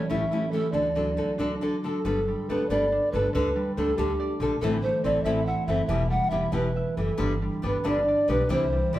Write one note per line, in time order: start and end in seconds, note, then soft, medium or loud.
0.00 0.50 E3 medium
0.00 0.79 G3 medium
0.00 1.16 A3 medium
0.00 1.73 B3 medium
0.00 0.15 D4 medium
0.00 0.30 E4 medium
0.09 0.24 A1 medium
0.09 0.23 A2 medium
0.09 0.23 A3 medium
0.09 0.78 C#4 medium
0.09 0.23 C#4 medium
0.09 0.23 E4 medium
0.09 0.23 G4 medium
0.09 0.53 E5 medium
0.31 0.44 A3 soft
0.31 0.45 C#4 soft
0.31 2.92 E4 medium
0.31 0.45 E4 medium
0.31 0.45 G4 medium
0.51 0.79 E3 medium
0.51 0.65 A3 medium
0.51 0.66 C#4 soft
0.51 0.66 E4 medium
0.51 0.66 G4 soft
0.51 0.72 A4 loud
0.72 1.16 D2 medium
0.72 1.83 D3 medium
0.72 0.87 D3 soft
0.72 0.87 D4 medium
0.72 0.87 F#4 medium
0.72 0.87 A4 medium
0.72 1.53 D5 medium
0.95 1.09 D3 soft
0.95 1.88 F#3 medium
0.95 1.09 D4 medium
0.95 1.09 F#4 medium
0.95 1.09 A4 medium
1.17 1.30 D3 soft
1.17 2.49 A3 medium
1.17 1.30 D4 soft
1.17 1.31 F#4 medium
1.17 1.31 A4 medium
1.38 1.54 D2 medium
1.38 1.53 D3 medium
1.38 2.92 D4 medium
1.38 1.53 D4 medium
1.38 1.53 F#4 medium
1.38 1.54 A4 medium
1.61 1.75 D3 medium
1.61 1.75 D4 medium
1.61 1.75 F#4 medium
1.61 1.75 A4 medium
1.61 3.47 D5 medium
1.84 1.97 D3 medium
1.84 2.03 D3 medium
1.84 1.97 D4 medium
1.84 1.97 F#4 medium
1.84 2.51 A4 medium
1.84 1.98 A4 soft
2.05 2.33 G1 medium
2.05 3.11 D3 medium
2.05 2.19 G3 medium
2.05 2.19 B3 medium
2.05 2.19 D4 medium
2.05 2.19 A4 medium
2.28 3.18 G3 medium
2.49 2.63 G1 medium
2.49 2.62 G3 medium
2.49 3.77 A3 medium
2.49 2.63 B3 medium
2.49 2.62 D4 medium
2.49 2.63 A4 medium
2.49 2.71 B4 medium
2.69 2.98 G1 medium
2.69 2.84 G3 medium
2.69 5.10 B3 medium
2.69 2.84 B3 medium
2.69 2.84 D4 medium
2.69 2.84 A4 medium
2.69 3.13 D5 medium
2.92 3.97 D4 medium
3.12 3.27 G1 medium
3.12 3.32 D3 medium
3.12 3.27 G3 medium
3.12 3.27 B3 medium
3.12 3.27 D4 soft
3.12 3.27 A4 medium
3.12 3.33 B4 loud
3.33 3.63 D2 medium
3.33 4.39 D3 medium
3.33 3.48 D3 medium
3.33 3.48 G3 medium
3.33 3.48 D4 medium
3.33 3.48 A4 medium
3.33 3.74 B4 medium
3.56 4.46 G3 medium
3.76 3.91 D2 medium
3.76 3.90 D3 medium
3.76 3.91 G3 medium
3.76 4.84 A3 medium
3.76 3.90 D4 medium
3.76 3.98 A4 medium
3.76 3.91 A4 medium
3.97 4.26 D2 medium
3.97 4.11 D3 medium
3.97 4.12 G3 medium
3.97 6.77 D4 medium
3.97 4.12 D4 medium
3.97 4.33 G4 medium
3.97 4.12 A4 medium
4.20 6.04 D5 medium
4.40 4.54 A#1 medium
4.40 4.67 D3 medium
4.40 4.53 D3 medium
4.40 4.54 G3 medium
4.40 4.54 D4 medium
4.40 4.54 A4 medium
4.61 4.89 A1 medium
4.61 4.76 A2 medium
4.61 5.67 E3 medium
4.61 4.76 E3 medium
4.61 4.76 C4 medium
4.61 4.76 E4 medium
4.61 4.67 A4 medium
4.61 4.76 A4 medium
4.82 8.17 A3 medium
4.82 5.06 C5 loud
5.04 5.18 A1 medium
5.04 5.17 E3 medium
5.04 6.38 C4 medium
5.04 5.17 C4 medium
5.04 5.18 E4 medium
5.04 5.18 A4 medium
5.04 5.25 D5 loud
5.23 5.52 A1 medium
5.23 5.39 A2 medium
5.23 5.39 E3 medium
5.23 5.39 C4 medium
5.23 6.52 E4 medium
5.23 5.39 E4 medium
5.23 5.39 A4 medium
5.23 5.47 E5 medium
5.46 6.76 E5 medium
5.46 5.68 F#5 medium
5.66 5.81 F#1 medium
5.66 5.80 E3 medium
5.66 5.87 E3 medium
5.66 5.81 C4 soft
5.66 5.81 E4 medium
5.66 5.81 A4 medium
5.66 5.85 E5 medium
5.86 6.17 E1 medium
5.86 6.02 E2 medium
5.86 6.02 B2 medium
5.86 6.97 E3 medium
5.86 6.02 E3 medium
5.86 6.02 G3 medium
5.86 6.02 E4 medium
5.86 6.11 E5 medium
5.90 6.03 G4 medium
6.10 7.24 G3 medium
6.10 6.32 F#5 loud
6.30 6.46 E1 medium
6.30 6.44 E3 soft
6.30 6.45 G3 medium
6.30 7.63 B3 medium
6.30 6.45 E4 medium
6.30 6.45 G4 medium
6.30 6.55 E5 medium
6.52 6.82 E1 medium
6.52 6.66 E2 medium
6.52 6.67 B2 medium
6.52 6.67 E3 medium
6.52 6.67 G3 medium
6.52 8.99 E4 medium
6.52 6.67 E4 medium
6.52 6.67 G4 medium
6.52 6.99 B4 medium
6.76 8.48 E5 medium
6.97 7.11 F#1 medium
6.97 7.10 E3 medium
6.97 7.24 E3 medium
6.97 7.10 G3 medium
6.97 7.11 E4 soft
6.97 7.11 G4 medium
6.97 7.37 A4 medium
7.17 7.48 G1 medium
7.17 7.32 G2 medium
7.17 7.32 D3 medium
7.17 8.28 D3 medium
7.17 7.32 G3 medium
7.17 7.32 B3 medium
7.17 7.32 D4 medium
7.17 7.32 G4 medium
7.42 8.34 G3 medium
7.62 7.77 G1 medium
7.62 7.76 G3 medium
7.62 7.76 B3 medium
7.62 8.99 B3 medium
7.62 7.76 D4 medium
7.62 7.76 G4 medium
7.62 7.89 B4 medium
7.84 8.13 G1 medium
7.84 7.98 G2 medium
7.84 7.98 D3 medium
7.84 7.98 G3 medium
7.84 7.99 B3 medium
7.84 7.99 D4 medium
7.84 8.99 D4 medium
7.84 7.99 G4 medium
7.88 8.32 D5 medium
8.08 8.99 D5 medium
8.28 8.42 B1 medium
8.28 8.55 D3 medium
8.28 8.41 G3 medium
8.28 8.41 B3 medium
8.28 8.42 D4 medium
8.28 8.42 G4 medium
8.28 8.53 B4 loud
8.49 8.78 C2 medium
8.49 8.63 C3 medium
8.49 8.99 E3 medium
8.49 8.63 G3 medium
8.49 8.63 C4 medium
8.49 8.63 E4 medium
8.49 8.64 G4 medium
8.49 8.97 C5 medium
8.73 8.99 G3 medium
8.93 8.99 C2 medium
8.93 8.99 G3 medium
8.93 8.99 C4 medium
8.93 8.99 E4 medium
8.93 8.99 G4 medium
8.93 8.99 D5 loud